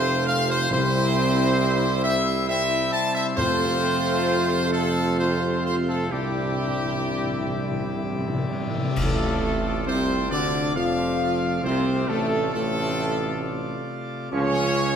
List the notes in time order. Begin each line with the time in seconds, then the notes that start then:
Already playing: F1 C3 F3 A3 C4 F4 C5
0.27 F5
0.50 C5
0.70 C2 C3 G3 C4 E4 C5
2.04 E5
2.48 C3 G3 C4 E4 E5
2.92 A5
3.15 E5
3.36 F2 C3 A3 C4 F4 C5
4.73 A4
5.17 C3 A3 C4 F4 C5
5.65 C5
5.89 A4
6.11 C2 C3 G3 D4 E4 G4 D5
6.20 C3
6.29 C3
6.36 C3
6.44 C3
6.52 C3
6.60 C3
6.68 C3
6.84 C3
6.92 C3
7.00 C3
7.16 C3
7.24 C3
7.32 C3
7.39 C3
7.47 C3
7.55 C3
7.63 C3
7.71 C3
7.79 C3
7.87 C3
7.95 C3
8.02 C3
8.10 C3
8.19 C3
8.26 C3
8.35 C3
8.43 C3
8.51 C3
8.60 C3
8.67 C3
8.75 C3
8.83 C3
8.96 A1 A2 C3 A3 F4 A4 D5, concert bass drum, crash
9.87 C2 C3 C4 C5
10.31 D2 D3 D4 D5
10.76 F2 F3 F4 F5
11.64 C2 C3 C4 C5
12.09 A1 A2 A3 A4
12.54 A1 A2 A3 A4
14.32 C#2 C#3 F3 G#3 C#4 F4 C#5